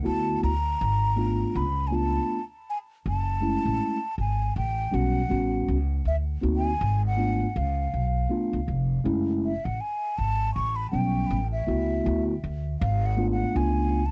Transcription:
0.03 0.36 D2 medium
0.03 0.50 A3 medium
0.03 0.51 B3 medium
0.03 0.51 E4 medium
0.03 0.51 F#4 medium
0.03 0.41 A5 loud
0.43 0.74 D2 medium
0.43 1.58 A#5 loud
0.81 1.42 G#1 loud
1.16 1.63 A3 medium
1.16 1.64 B3 medium
1.16 1.64 D4 medium
1.16 1.64 F4 medium
1.55 2.17 C#2 loud
1.55 1.89 B5 medium
1.87 2.38 A3 medium
1.87 1.96 G#5 medium
1.92 2.38 B3 medium
1.92 2.39 D4 medium
1.92 2.39 F4 medium
1.92 2.44 A5 medium
2.70 2.78 G#5 medium
3.06 3.55 F#1 medium
3.06 4.15 A5 loud
3.41 3.97 G#3 medium
3.41 3.97 A3 medium
3.41 3.98 C#4 medium
3.41 3.98 E4 medium
3.66 3.78 A1 medium
4.18 4.49 G#1 medium
4.18 4.54 G#5 medium
4.56 4.87 A1 medium
4.56 4.96 G5 medium
4.91 5.24 B1 medium
4.91 5.20 G3 medium
4.91 5.21 B3 medium
4.91 5.21 C#4 medium
4.91 5.21 F#4 medium
4.91 5.69 F#5 medium
5.29 5.62 A1 medium
5.29 5.76 G3 medium
5.29 5.76 B3 medium
5.29 5.76 C#4 medium
5.29 5.77 F#4 medium
5.68 5.99 C#2 medium
6.05 6.36 D2 medium
6.05 6.16 E5 medium
6.41 6.74 D2 medium
6.41 6.70 A#3 medium
6.41 6.71 C4 medium
6.41 6.71 D#4 medium
6.41 6.71 F#4 medium
6.56 7.02 G#5 loud
6.81 7.42 G#1 loud
7.07 7.59 F#5 medium
7.17 7.46 A3 medium
7.17 7.46 B3 medium
7.17 7.46 D4 medium
7.17 7.46 F4 medium
7.56 7.86 C#2 loud
7.56 8.31 F5 medium
7.94 8.24 B1 medium
8.29 8.58 A3 medium
8.29 8.58 B3 medium
8.29 8.59 D4 medium
8.29 8.59 F4 medium
8.53 8.65 C#2 medium
8.68 8.99 F1 medium
9.04 9.54 F#1 medium
9.04 9.51 G#3 medium
9.04 9.51 A3 medium
9.04 9.52 C#4 medium
9.04 9.52 E4 medium
9.44 9.66 E5 medium
9.64 9.78 A1 medium
9.64 9.82 F#5 medium
9.81 10.19 G#5 medium
10.18 10.49 G#1 medium
10.18 10.54 A5 loud
10.55 10.86 A1 medium
10.55 10.77 C#6 loud
10.76 10.91 B5 medium
10.91 11.24 B1 medium
10.91 11.39 F#3 medium
10.91 11.39 G3 medium
10.91 11.39 B3 medium
10.91 11.39 C#4 medium
10.91 11.48 G5 medium
11.30 11.61 A1 loud
11.52 12.23 E5 medium
11.67 11.99 C#2 medium
11.67 12.03 A3 medium
11.67 12.04 B3 medium
11.67 12.04 E4 medium
11.67 12.05 F#4 medium
12.04 12.37 D2 loud
12.04 12.33 A3 medium
12.04 12.33 B3 medium
12.04 12.33 E4 medium
12.04 12.34 F#4 medium
12.44 12.74 D2 medium
12.80 13.43 G#1 loud
12.80 13.07 F5 medium
13.06 13.31 F#5 medium
13.17 13.53 A3 medium
13.17 13.54 B3 medium
13.17 13.54 D4 medium
13.17 13.55 F4 medium
13.31 13.58 F#5 medium
13.54 14.11 C#2 medium
13.54 14.01 A3 medium
13.54 14.01 B3 medium
13.54 14.02 D4 medium
13.54 14.02 F4 medium
13.54 14.07 G#5 medium
14.06 14.11 A5 loud

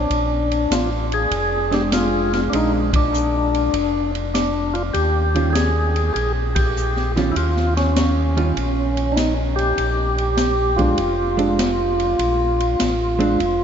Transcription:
0.00 0.74 D4 medium
0.10 0.67 A#1 medium
0.10 kick soft
0.10 ride medium
0.52 ride soft
0.70 1.27 A1 medium
0.70 0.90 F4 medium
0.70 snare medium
0.70 hi-hat pedal soft
0.70 ride medium
1.12 1.75 G#4 loud
1.12 ride soft
1.31 2.48 F1 medium
1.31 kick soft
1.31 ride medium
1.71 2.48 G#3 soft
1.71 2.48 C4 medium
1.71 2.48 D4 medium
1.71 1.82 G4 medium
1.71 snare soft
1.71 ride soft
1.92 2.33 F4 medium
1.92 snare medium
1.92 hi-hat pedal medium
1.92 ride medium
2.33 2.41 F4 medium
2.33 snare soft
2.33 ride soft
2.50 3.69 A#1 medium
2.50 2.89 G#3 soft
2.50 2.89 C4 medium
2.50 2.53 D4 medium
2.50 2.90 D4 medium
2.50 kick soft
2.50 ride medium
2.55 2.73 D#4 medium
2.93 4.11 D4 medium
2.93 kick medium
2.93 ride medium
3.14 hi-hat pedal medium
3.55 ride soft
3.74 4.90 F1 medium
3.74 kick soft
3.74 ride medium
4.15 ride soft
4.34 4.76 D4 medium
4.34 snare medium
4.34 hi-hat pedal medium
4.34 ride medium
4.74 4.83 F4 medium
4.74 ride soft
4.94 6.11 D#2 medium
4.94 5.49 G4 medium
4.94 kick soft
4.94 ride medium
5.35 5.53 D#3 medium
5.35 5.53 G3 medium
5.35 5.53 C#4 medium
5.35 5.53 F4 medium
5.35 ride soft
5.50 5.55 G4 medium
5.50 6.13 G#4 medium
5.55 snare medium
5.55 hi-hat pedal medium
5.55 ride medium
5.96 ride soft
6.14 7.32 A#1 medium
6.14 6.33 G#4 medium
6.14 kick soft
6.14 ride soft
6.55 7.12 G4 medium
6.55 kick medium
6.55 ride medium
6.76 hi-hat pedal medium
6.96 snare soft
7.16 7.34 D#3 medium
7.16 7.34 G3 medium
7.16 7.35 C#4 medium
7.16 7.35 F4 medium
7.16 snare soft
7.16 ride soft
7.32 7.36 E4 medium
7.36 8.53 D#2 medium
7.36 7.74 F4 medium
7.36 kick soft
7.36 ride medium
7.57 snare soft
7.77 9.17 C#4 medium
7.77 snare soft
7.77 ride soft
7.96 snare medium
7.96 hi-hat pedal medium
7.96 ride medium
8.37 8.55 D#3 medium
8.37 8.55 G3 medium
8.37 8.55 C#4 medium
8.37 8.55 F4 medium
8.37 ride soft
8.57 9.74 A#1 medium
8.57 kick soft
8.57 ride medium
8.97 ride soft
9.12 9.17 D4 medium
9.12 9.34 D#4 medium
9.17 snare medium
9.17 hi-hat pedal medium
9.17 ride medium
9.56 10.81 G4 loud
9.56 ride soft
9.78 10.95 A#1 medium
9.78 kick soft
9.78 ride medium
10.18 ride soft
10.37 snare medium
10.37 hi-hat pedal soft
10.37 ride medium
10.76 10.96 G#3 medium
10.76 10.97 C4 medium
10.76 10.97 D4 medium
10.76 13.64 F4 medium
10.76 kick medium
10.76 ride soft
10.98 12.15 F1 medium
10.98 kick soft
10.98 ride medium
11.37 11.56 G#3 medium
11.37 11.57 C4 medium
11.37 11.57 D4 medium
11.37 ride soft
11.59 snare medium
11.59 hi-hat pedal medium
11.59 ride medium
12.00 ride soft
12.19 12.76 A#1 medium
12.19 kick soft
12.19 ride medium
12.60 ride soft
12.80 13.37 A1 medium
12.80 snare medium
12.80 hi-hat pedal medium
12.80 ride medium
13.19 13.37 G#3 medium
13.19 13.38 C4 medium
13.19 13.38 D4 medium
13.19 ride soft
13.40 13.64 F1 medium
13.40 kick soft
13.40 ride soft

